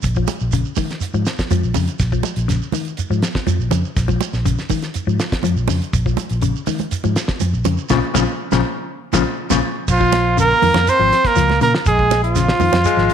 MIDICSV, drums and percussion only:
0, 0, Header, 1, 3, 480
1, 0, Start_track
1, 0, Key_signature, -5, "minor"
1, 0, Tempo, 492611
1, 38, Time_signature, 4, 2, 24, 8
1, 12800, End_track
2, 0, Start_track
2, 0, Title_t, "Shekere"
2, 26, Note_on_c, 9, 82, 81
2, 123, Note_off_c, 9, 82, 0
2, 147, Note_on_c, 9, 82, 28
2, 245, Note_off_c, 9, 82, 0
2, 264, Note_on_c, 9, 82, 64
2, 362, Note_off_c, 9, 82, 0
2, 387, Note_on_c, 9, 82, 29
2, 484, Note_off_c, 9, 82, 0
2, 506, Note_on_c, 9, 82, 81
2, 604, Note_off_c, 9, 82, 0
2, 632, Note_on_c, 9, 82, 26
2, 729, Note_off_c, 9, 82, 0
2, 737, Note_on_c, 9, 82, 64
2, 835, Note_off_c, 9, 82, 0
2, 869, Note_on_c, 9, 82, 26
2, 967, Note_off_c, 9, 82, 0
2, 980, Note_on_c, 9, 82, 77
2, 1078, Note_off_c, 9, 82, 0
2, 1110, Note_on_c, 9, 82, 28
2, 1208, Note_off_c, 9, 82, 0
2, 1225, Note_on_c, 9, 82, 61
2, 1323, Note_off_c, 9, 82, 0
2, 1347, Note_on_c, 9, 82, 27
2, 1444, Note_off_c, 9, 82, 0
2, 1469, Note_on_c, 9, 82, 80
2, 1566, Note_off_c, 9, 82, 0
2, 1591, Note_on_c, 9, 82, 25
2, 1689, Note_off_c, 9, 82, 0
2, 1704, Note_on_c, 9, 82, 68
2, 1801, Note_off_c, 9, 82, 0
2, 1830, Note_on_c, 9, 82, 27
2, 1928, Note_off_c, 9, 82, 0
2, 1943, Note_on_c, 9, 82, 81
2, 2041, Note_off_c, 9, 82, 0
2, 2071, Note_on_c, 9, 82, 26
2, 2168, Note_off_c, 9, 82, 0
2, 2192, Note_on_c, 9, 82, 67
2, 2289, Note_off_c, 9, 82, 0
2, 2319, Note_on_c, 9, 82, 28
2, 2416, Note_off_c, 9, 82, 0
2, 2434, Note_on_c, 9, 82, 84
2, 2531, Note_off_c, 9, 82, 0
2, 2557, Note_on_c, 9, 82, 28
2, 2654, Note_off_c, 9, 82, 0
2, 2672, Note_on_c, 9, 82, 63
2, 2770, Note_off_c, 9, 82, 0
2, 2800, Note_on_c, 9, 82, 26
2, 2898, Note_off_c, 9, 82, 0
2, 2910, Note_on_c, 9, 82, 80
2, 3008, Note_off_c, 9, 82, 0
2, 3037, Note_on_c, 9, 82, 27
2, 3135, Note_off_c, 9, 82, 0
2, 3154, Note_on_c, 9, 82, 64
2, 3251, Note_off_c, 9, 82, 0
2, 3274, Note_on_c, 9, 82, 26
2, 3372, Note_off_c, 9, 82, 0
2, 3391, Note_on_c, 9, 82, 79
2, 3488, Note_off_c, 9, 82, 0
2, 3513, Note_on_c, 9, 82, 26
2, 3610, Note_off_c, 9, 82, 0
2, 3626, Note_on_c, 9, 82, 65
2, 3723, Note_off_c, 9, 82, 0
2, 3749, Note_on_c, 9, 82, 28
2, 3846, Note_off_c, 9, 82, 0
2, 3866, Note_on_c, 9, 82, 77
2, 3963, Note_off_c, 9, 82, 0
2, 3990, Note_on_c, 9, 82, 27
2, 4087, Note_off_c, 9, 82, 0
2, 4109, Note_on_c, 9, 82, 63
2, 4207, Note_off_c, 9, 82, 0
2, 4222, Note_on_c, 9, 82, 29
2, 4320, Note_off_c, 9, 82, 0
2, 4343, Note_on_c, 9, 82, 82
2, 4441, Note_off_c, 9, 82, 0
2, 4465, Note_on_c, 9, 82, 27
2, 4562, Note_off_c, 9, 82, 0
2, 4577, Note_on_c, 9, 82, 63
2, 4674, Note_off_c, 9, 82, 0
2, 4710, Note_on_c, 9, 82, 25
2, 4808, Note_off_c, 9, 82, 0
2, 4828, Note_on_c, 9, 82, 75
2, 4925, Note_off_c, 9, 82, 0
2, 4957, Note_on_c, 9, 82, 30
2, 5054, Note_off_c, 9, 82, 0
2, 5065, Note_on_c, 9, 82, 60
2, 5163, Note_off_c, 9, 82, 0
2, 5192, Note_on_c, 9, 82, 28
2, 5289, Note_off_c, 9, 82, 0
2, 5305, Note_on_c, 9, 82, 79
2, 5402, Note_off_c, 9, 82, 0
2, 5424, Note_on_c, 9, 82, 26
2, 5522, Note_off_c, 9, 82, 0
2, 5547, Note_on_c, 9, 82, 62
2, 5645, Note_off_c, 9, 82, 0
2, 5673, Note_on_c, 9, 82, 29
2, 5770, Note_off_c, 9, 82, 0
2, 5786, Note_on_c, 9, 82, 77
2, 5884, Note_off_c, 9, 82, 0
2, 5917, Note_on_c, 9, 82, 27
2, 6014, Note_off_c, 9, 82, 0
2, 6028, Note_on_c, 9, 82, 63
2, 6126, Note_off_c, 9, 82, 0
2, 6149, Note_on_c, 9, 82, 29
2, 6247, Note_off_c, 9, 82, 0
2, 6258, Note_on_c, 9, 82, 86
2, 6356, Note_off_c, 9, 82, 0
2, 6389, Note_on_c, 9, 82, 29
2, 6487, Note_off_c, 9, 82, 0
2, 6500, Note_on_c, 9, 82, 64
2, 6597, Note_off_c, 9, 82, 0
2, 6621, Note_on_c, 9, 82, 28
2, 6718, Note_off_c, 9, 82, 0
2, 6741, Note_on_c, 9, 82, 84
2, 6838, Note_off_c, 9, 82, 0
2, 6863, Note_on_c, 9, 82, 30
2, 6961, Note_off_c, 9, 82, 0
2, 6981, Note_on_c, 9, 82, 64
2, 7078, Note_off_c, 9, 82, 0
2, 7097, Note_on_c, 9, 82, 27
2, 7195, Note_off_c, 9, 82, 0
2, 7211, Note_on_c, 9, 82, 85
2, 7308, Note_off_c, 9, 82, 0
2, 7338, Note_on_c, 9, 82, 29
2, 7435, Note_off_c, 9, 82, 0
2, 7452, Note_on_c, 9, 82, 65
2, 7549, Note_off_c, 9, 82, 0
2, 7579, Note_on_c, 9, 82, 29
2, 7676, Note_off_c, 9, 82, 0
2, 7690, Note_on_c, 9, 82, 91
2, 7787, Note_off_c, 9, 82, 0
2, 7944, Note_on_c, 9, 82, 96
2, 8041, Note_off_c, 9, 82, 0
2, 8302, Note_on_c, 9, 82, 99
2, 8399, Note_off_c, 9, 82, 0
2, 8900, Note_on_c, 9, 82, 91
2, 8998, Note_off_c, 9, 82, 0
2, 9261, Note_on_c, 9, 82, 100
2, 9358, Note_off_c, 9, 82, 0
2, 9628, Note_on_c, 9, 82, 90
2, 9725, Note_off_c, 9, 82, 0
2, 9875, Note_on_c, 9, 82, 31
2, 9972, Note_off_c, 9, 82, 0
2, 10115, Note_on_c, 9, 82, 85
2, 10212, Note_off_c, 9, 82, 0
2, 10358, Note_on_c, 9, 82, 30
2, 10455, Note_off_c, 9, 82, 0
2, 10598, Note_on_c, 9, 82, 89
2, 10695, Note_off_c, 9, 82, 0
2, 10836, Note_on_c, 9, 82, 29
2, 10934, Note_off_c, 9, 82, 0
2, 11068, Note_on_c, 9, 82, 86
2, 11165, Note_off_c, 9, 82, 0
2, 11310, Note_on_c, 9, 82, 31
2, 11408, Note_off_c, 9, 82, 0
2, 11552, Note_on_c, 9, 82, 89
2, 11650, Note_off_c, 9, 82, 0
2, 11796, Note_on_c, 9, 82, 30
2, 11894, Note_off_c, 9, 82, 0
2, 12039, Note_on_c, 9, 82, 88
2, 12136, Note_off_c, 9, 82, 0
2, 12280, Note_on_c, 9, 82, 29
2, 12377, Note_off_c, 9, 82, 0
2, 12517, Note_on_c, 9, 82, 85
2, 12614, Note_off_c, 9, 82, 0
2, 12755, Note_on_c, 9, 82, 29
2, 12800, Note_off_c, 9, 82, 0
2, 12800, End_track
3, 0, Start_track
3, 0, Title_t, "Drums"
3, 41, Note_on_c, 9, 36, 87
3, 42, Note_on_c, 9, 42, 68
3, 138, Note_off_c, 9, 36, 0
3, 139, Note_off_c, 9, 42, 0
3, 161, Note_on_c, 9, 36, 61
3, 259, Note_off_c, 9, 36, 0
3, 270, Note_on_c, 9, 63, 83
3, 270, Note_on_c, 9, 64, 61
3, 286, Note_on_c, 9, 42, 51
3, 367, Note_off_c, 9, 63, 0
3, 367, Note_off_c, 9, 64, 0
3, 383, Note_off_c, 9, 42, 0
3, 519, Note_on_c, 9, 36, 60
3, 523, Note_on_c, 9, 42, 63
3, 617, Note_off_c, 9, 36, 0
3, 621, Note_off_c, 9, 42, 0
3, 748, Note_on_c, 9, 63, 79
3, 748, Note_on_c, 9, 64, 74
3, 756, Note_on_c, 9, 36, 61
3, 757, Note_on_c, 9, 46, 61
3, 845, Note_off_c, 9, 63, 0
3, 845, Note_off_c, 9, 64, 0
3, 854, Note_off_c, 9, 36, 0
3, 854, Note_off_c, 9, 46, 0
3, 883, Note_on_c, 9, 42, 44
3, 885, Note_on_c, 9, 38, 26
3, 980, Note_off_c, 9, 42, 0
3, 982, Note_off_c, 9, 38, 0
3, 995, Note_on_c, 9, 42, 66
3, 1093, Note_off_c, 9, 42, 0
3, 1232, Note_on_c, 9, 42, 46
3, 1234, Note_on_c, 9, 38, 61
3, 1329, Note_off_c, 9, 42, 0
3, 1331, Note_off_c, 9, 38, 0
3, 1354, Note_on_c, 9, 36, 67
3, 1356, Note_on_c, 9, 42, 43
3, 1358, Note_on_c, 9, 38, 65
3, 1452, Note_off_c, 9, 36, 0
3, 1453, Note_off_c, 9, 42, 0
3, 1455, Note_off_c, 9, 38, 0
3, 1468, Note_on_c, 9, 63, 78
3, 1472, Note_on_c, 9, 42, 57
3, 1566, Note_off_c, 9, 63, 0
3, 1570, Note_off_c, 9, 42, 0
3, 1699, Note_on_c, 9, 63, 81
3, 1699, Note_on_c, 9, 64, 72
3, 1704, Note_on_c, 9, 46, 57
3, 1796, Note_off_c, 9, 63, 0
3, 1796, Note_off_c, 9, 64, 0
3, 1802, Note_off_c, 9, 46, 0
3, 1828, Note_on_c, 9, 42, 43
3, 1925, Note_off_c, 9, 42, 0
3, 1944, Note_on_c, 9, 42, 65
3, 1945, Note_on_c, 9, 36, 93
3, 1945, Note_on_c, 9, 38, 29
3, 2041, Note_off_c, 9, 42, 0
3, 2043, Note_off_c, 9, 36, 0
3, 2043, Note_off_c, 9, 38, 0
3, 2068, Note_on_c, 9, 36, 58
3, 2166, Note_off_c, 9, 36, 0
3, 2175, Note_on_c, 9, 63, 84
3, 2181, Note_on_c, 9, 42, 44
3, 2273, Note_off_c, 9, 63, 0
3, 2279, Note_off_c, 9, 42, 0
3, 2301, Note_on_c, 9, 42, 49
3, 2398, Note_off_c, 9, 42, 0
3, 2425, Note_on_c, 9, 42, 59
3, 2427, Note_on_c, 9, 38, 27
3, 2523, Note_off_c, 9, 42, 0
3, 2525, Note_off_c, 9, 38, 0
3, 2654, Note_on_c, 9, 63, 79
3, 2654, Note_on_c, 9, 64, 79
3, 2657, Note_on_c, 9, 46, 60
3, 2752, Note_off_c, 9, 63, 0
3, 2752, Note_off_c, 9, 64, 0
3, 2754, Note_off_c, 9, 46, 0
3, 2776, Note_on_c, 9, 42, 51
3, 2874, Note_off_c, 9, 42, 0
3, 2896, Note_on_c, 9, 42, 63
3, 2993, Note_off_c, 9, 42, 0
3, 3141, Note_on_c, 9, 42, 49
3, 3143, Note_on_c, 9, 38, 67
3, 3239, Note_off_c, 9, 42, 0
3, 3241, Note_off_c, 9, 38, 0
3, 3265, Note_on_c, 9, 36, 65
3, 3266, Note_on_c, 9, 38, 64
3, 3362, Note_off_c, 9, 36, 0
3, 3364, Note_off_c, 9, 38, 0
3, 3379, Note_on_c, 9, 63, 73
3, 3387, Note_on_c, 9, 42, 65
3, 3477, Note_off_c, 9, 63, 0
3, 3484, Note_off_c, 9, 42, 0
3, 3616, Note_on_c, 9, 63, 83
3, 3616, Note_on_c, 9, 64, 76
3, 3627, Note_on_c, 9, 42, 50
3, 3714, Note_off_c, 9, 63, 0
3, 3714, Note_off_c, 9, 64, 0
3, 3724, Note_off_c, 9, 42, 0
3, 3864, Note_on_c, 9, 36, 92
3, 3865, Note_on_c, 9, 42, 68
3, 3867, Note_on_c, 9, 38, 28
3, 3962, Note_off_c, 9, 36, 0
3, 3963, Note_off_c, 9, 42, 0
3, 3965, Note_off_c, 9, 38, 0
3, 3979, Note_on_c, 9, 63, 60
3, 3987, Note_on_c, 9, 36, 66
3, 4076, Note_off_c, 9, 63, 0
3, 4084, Note_off_c, 9, 36, 0
3, 4098, Note_on_c, 9, 63, 84
3, 4105, Note_on_c, 9, 42, 49
3, 4195, Note_off_c, 9, 63, 0
3, 4202, Note_off_c, 9, 42, 0
3, 4223, Note_on_c, 9, 38, 26
3, 4321, Note_off_c, 9, 38, 0
3, 4343, Note_on_c, 9, 36, 60
3, 4346, Note_on_c, 9, 42, 68
3, 4440, Note_off_c, 9, 36, 0
3, 4444, Note_off_c, 9, 42, 0
3, 4469, Note_on_c, 9, 38, 26
3, 4567, Note_off_c, 9, 38, 0
3, 4576, Note_on_c, 9, 63, 79
3, 4576, Note_on_c, 9, 64, 80
3, 4581, Note_on_c, 9, 46, 58
3, 4582, Note_on_c, 9, 36, 62
3, 4673, Note_off_c, 9, 63, 0
3, 4673, Note_off_c, 9, 64, 0
3, 4678, Note_off_c, 9, 46, 0
3, 4679, Note_off_c, 9, 36, 0
3, 4700, Note_on_c, 9, 42, 50
3, 4702, Note_on_c, 9, 38, 26
3, 4797, Note_off_c, 9, 42, 0
3, 4799, Note_off_c, 9, 38, 0
3, 4814, Note_on_c, 9, 42, 67
3, 4911, Note_off_c, 9, 42, 0
3, 5062, Note_on_c, 9, 42, 51
3, 5064, Note_on_c, 9, 38, 67
3, 5159, Note_off_c, 9, 42, 0
3, 5161, Note_off_c, 9, 38, 0
3, 5187, Note_on_c, 9, 36, 65
3, 5188, Note_on_c, 9, 42, 48
3, 5190, Note_on_c, 9, 38, 67
3, 5284, Note_off_c, 9, 36, 0
3, 5285, Note_off_c, 9, 42, 0
3, 5287, Note_off_c, 9, 38, 0
3, 5289, Note_on_c, 9, 63, 81
3, 5309, Note_on_c, 9, 42, 63
3, 5386, Note_off_c, 9, 63, 0
3, 5406, Note_off_c, 9, 42, 0
3, 5531, Note_on_c, 9, 63, 84
3, 5531, Note_on_c, 9, 64, 73
3, 5545, Note_on_c, 9, 46, 57
3, 5628, Note_off_c, 9, 63, 0
3, 5628, Note_off_c, 9, 64, 0
3, 5642, Note_off_c, 9, 46, 0
3, 5670, Note_on_c, 9, 42, 45
3, 5767, Note_off_c, 9, 42, 0
3, 5782, Note_on_c, 9, 36, 87
3, 5782, Note_on_c, 9, 42, 65
3, 5880, Note_off_c, 9, 36, 0
3, 5880, Note_off_c, 9, 42, 0
3, 5904, Note_on_c, 9, 36, 64
3, 6001, Note_off_c, 9, 36, 0
3, 6011, Note_on_c, 9, 63, 89
3, 6011, Note_on_c, 9, 64, 65
3, 6018, Note_on_c, 9, 42, 46
3, 6109, Note_off_c, 9, 63, 0
3, 6109, Note_off_c, 9, 64, 0
3, 6115, Note_off_c, 9, 42, 0
3, 6133, Note_on_c, 9, 42, 47
3, 6231, Note_off_c, 9, 42, 0
3, 6251, Note_on_c, 9, 42, 58
3, 6348, Note_off_c, 9, 42, 0
3, 6490, Note_on_c, 9, 46, 60
3, 6501, Note_on_c, 9, 63, 76
3, 6501, Note_on_c, 9, 64, 79
3, 6587, Note_off_c, 9, 46, 0
3, 6598, Note_off_c, 9, 63, 0
3, 6598, Note_off_c, 9, 64, 0
3, 6615, Note_on_c, 9, 42, 48
3, 6622, Note_on_c, 9, 63, 63
3, 6713, Note_off_c, 9, 42, 0
3, 6719, Note_off_c, 9, 63, 0
3, 6736, Note_on_c, 9, 42, 67
3, 6833, Note_off_c, 9, 42, 0
3, 6858, Note_on_c, 9, 63, 70
3, 6955, Note_off_c, 9, 63, 0
3, 6977, Note_on_c, 9, 42, 47
3, 6979, Note_on_c, 9, 38, 66
3, 7074, Note_off_c, 9, 42, 0
3, 7076, Note_off_c, 9, 38, 0
3, 7094, Note_on_c, 9, 38, 70
3, 7100, Note_on_c, 9, 36, 71
3, 7192, Note_off_c, 9, 38, 0
3, 7198, Note_off_c, 9, 36, 0
3, 7212, Note_on_c, 9, 42, 61
3, 7217, Note_on_c, 9, 63, 79
3, 7309, Note_off_c, 9, 42, 0
3, 7315, Note_off_c, 9, 63, 0
3, 7455, Note_on_c, 9, 63, 87
3, 7455, Note_on_c, 9, 64, 75
3, 7460, Note_on_c, 9, 42, 54
3, 7553, Note_off_c, 9, 63, 0
3, 7553, Note_off_c, 9, 64, 0
3, 7557, Note_off_c, 9, 42, 0
3, 7697, Note_on_c, 9, 63, 85
3, 7701, Note_on_c, 9, 36, 78
3, 7704, Note_on_c, 9, 38, 81
3, 7794, Note_off_c, 9, 63, 0
3, 7799, Note_off_c, 9, 36, 0
3, 7801, Note_off_c, 9, 38, 0
3, 7939, Note_on_c, 9, 38, 72
3, 7940, Note_on_c, 9, 36, 72
3, 7942, Note_on_c, 9, 63, 95
3, 8037, Note_off_c, 9, 38, 0
3, 8038, Note_off_c, 9, 36, 0
3, 8039, Note_off_c, 9, 63, 0
3, 8301, Note_on_c, 9, 63, 90
3, 8305, Note_on_c, 9, 36, 78
3, 8309, Note_on_c, 9, 38, 74
3, 8398, Note_off_c, 9, 63, 0
3, 8403, Note_off_c, 9, 36, 0
3, 8406, Note_off_c, 9, 38, 0
3, 8894, Note_on_c, 9, 63, 93
3, 8903, Note_on_c, 9, 36, 78
3, 8905, Note_on_c, 9, 38, 70
3, 8992, Note_off_c, 9, 63, 0
3, 9000, Note_off_c, 9, 36, 0
3, 9002, Note_off_c, 9, 38, 0
3, 9258, Note_on_c, 9, 63, 94
3, 9269, Note_on_c, 9, 36, 76
3, 9272, Note_on_c, 9, 38, 76
3, 9356, Note_off_c, 9, 63, 0
3, 9366, Note_off_c, 9, 36, 0
3, 9370, Note_off_c, 9, 38, 0
3, 9629, Note_on_c, 9, 36, 93
3, 9630, Note_on_c, 9, 49, 94
3, 9726, Note_off_c, 9, 36, 0
3, 9728, Note_off_c, 9, 49, 0
3, 9752, Note_on_c, 9, 36, 68
3, 9850, Note_off_c, 9, 36, 0
3, 9866, Note_on_c, 9, 63, 98
3, 9873, Note_on_c, 9, 42, 49
3, 9875, Note_on_c, 9, 38, 27
3, 9963, Note_off_c, 9, 63, 0
3, 9971, Note_off_c, 9, 42, 0
3, 9973, Note_off_c, 9, 38, 0
3, 10115, Note_on_c, 9, 42, 67
3, 10212, Note_off_c, 9, 42, 0
3, 10353, Note_on_c, 9, 63, 86
3, 10353, Note_on_c, 9, 64, 88
3, 10356, Note_on_c, 9, 46, 68
3, 10450, Note_off_c, 9, 63, 0
3, 10450, Note_off_c, 9, 64, 0
3, 10453, Note_off_c, 9, 46, 0
3, 10468, Note_on_c, 9, 63, 100
3, 10481, Note_on_c, 9, 42, 55
3, 10483, Note_on_c, 9, 38, 72
3, 10566, Note_off_c, 9, 63, 0
3, 10578, Note_off_c, 9, 42, 0
3, 10580, Note_off_c, 9, 38, 0
3, 10596, Note_on_c, 9, 42, 75
3, 10598, Note_on_c, 9, 38, 32
3, 10694, Note_off_c, 9, 42, 0
3, 10695, Note_off_c, 9, 38, 0
3, 10841, Note_on_c, 9, 42, 53
3, 10843, Note_on_c, 9, 38, 27
3, 10939, Note_off_c, 9, 42, 0
3, 10940, Note_off_c, 9, 38, 0
3, 10958, Note_on_c, 9, 36, 72
3, 10958, Note_on_c, 9, 42, 52
3, 10960, Note_on_c, 9, 38, 27
3, 11055, Note_off_c, 9, 36, 0
3, 11056, Note_off_c, 9, 42, 0
3, 11058, Note_off_c, 9, 38, 0
3, 11079, Note_on_c, 9, 42, 69
3, 11081, Note_on_c, 9, 38, 28
3, 11177, Note_off_c, 9, 42, 0
3, 11179, Note_off_c, 9, 38, 0
3, 11202, Note_on_c, 9, 63, 81
3, 11212, Note_on_c, 9, 38, 28
3, 11299, Note_off_c, 9, 63, 0
3, 11309, Note_off_c, 9, 38, 0
3, 11317, Note_on_c, 9, 64, 85
3, 11323, Note_on_c, 9, 42, 57
3, 11414, Note_off_c, 9, 64, 0
3, 11420, Note_off_c, 9, 42, 0
3, 11444, Note_on_c, 9, 38, 74
3, 11542, Note_off_c, 9, 38, 0
3, 11560, Note_on_c, 9, 36, 100
3, 11560, Note_on_c, 9, 42, 77
3, 11658, Note_off_c, 9, 36, 0
3, 11658, Note_off_c, 9, 42, 0
3, 11684, Note_on_c, 9, 36, 66
3, 11782, Note_off_c, 9, 36, 0
3, 11801, Note_on_c, 9, 63, 99
3, 11806, Note_on_c, 9, 42, 58
3, 11808, Note_on_c, 9, 38, 26
3, 11899, Note_off_c, 9, 63, 0
3, 11903, Note_off_c, 9, 42, 0
3, 11905, Note_off_c, 9, 38, 0
3, 11927, Note_on_c, 9, 42, 55
3, 12024, Note_off_c, 9, 42, 0
3, 12045, Note_on_c, 9, 42, 72
3, 12047, Note_on_c, 9, 38, 29
3, 12142, Note_off_c, 9, 42, 0
3, 12144, Note_off_c, 9, 38, 0
3, 12165, Note_on_c, 9, 38, 68
3, 12263, Note_off_c, 9, 38, 0
3, 12275, Note_on_c, 9, 63, 88
3, 12275, Note_on_c, 9, 64, 87
3, 12284, Note_on_c, 9, 46, 66
3, 12373, Note_off_c, 9, 63, 0
3, 12373, Note_off_c, 9, 64, 0
3, 12381, Note_off_c, 9, 46, 0
3, 12401, Note_on_c, 9, 63, 95
3, 12411, Note_on_c, 9, 42, 58
3, 12413, Note_on_c, 9, 38, 72
3, 12498, Note_off_c, 9, 63, 0
3, 12508, Note_off_c, 9, 42, 0
3, 12510, Note_off_c, 9, 38, 0
3, 12525, Note_on_c, 9, 42, 79
3, 12529, Note_on_c, 9, 63, 71
3, 12622, Note_off_c, 9, 42, 0
3, 12626, Note_off_c, 9, 63, 0
3, 12650, Note_on_c, 9, 38, 30
3, 12747, Note_off_c, 9, 38, 0
3, 12765, Note_on_c, 9, 42, 56
3, 12800, Note_off_c, 9, 42, 0
3, 12800, End_track
0, 0, End_of_file